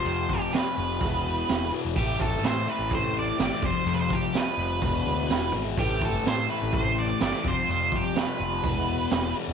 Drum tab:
HH |o---o---o---o---|o---o---o---o---|o---o---o---o---|o---o---o---o---|
SD |----o-------o---|----o-------o---|----o-------o---|----oo------o---|
BD |--o-----o-------|o-o-----o-----o-|--o-----o-------|o-o-----o-----o-|

HH |o---o---o---o---|
SD |----o-------o---|
BD |--o-----o-------|